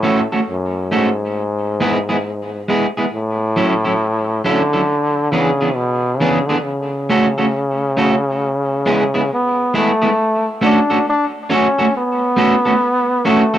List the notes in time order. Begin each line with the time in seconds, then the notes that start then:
Already playing: A2
0.03 A3 C#4 F#4 A4
0.32 A3 C#4 F#4 A4
0.50 F#2
0.92 G#2 A3 C#4 F#4 A4
1.80 G#3 B3 E4 G#4
2.09 G#3 B3 E4 G#4
2.68 G#3 B3 E4 G#4
2.97 G#3 B3 E4 G#4
3.14 A2
3.56 F#3 C#4 E4 A4
3.85 F#3 C#4 E4 A4
4.44 D3 F#3 C#4 E4 A4
4.73 F#3 C#4 E4 A4
5.32 C#3 E3 B3 D4 G#4
5.61 E3 B3 D4 G#4
5.75 B2
6.18 C#3 E3 B3 D4 G#4
6.47 D3 E3 B3 D4 G#4
6.60 C#3 D3
7.10 A3 C#4 F#4 A4
7.38 A3 C#4 F#4 A4
7.97 A3 C#4 F#4 A4
8.86 G#3 B3 E4 G#4
9.14 G#3 B3 E4 G#4
9.33 B3
9.74 G#3 A3 B3 E4 G#4
10.02 G#3 B3 E4 G#4
10.61 A3 C#4 D4 F#4 A4
10.90 A3 C#4 F#4 A4
11.09 D4
11.50 A3 C#4 F#4 A4
11.54 C#4
11.79 A3 C#4 F#4 A4
11.97 B3
12.37 A3 C#4 F#4 A4
12.65 A3 C#4 F#4 A4
13.25 A3 C#4 F#4 A4
13.54 A3 C#4 F#4 A4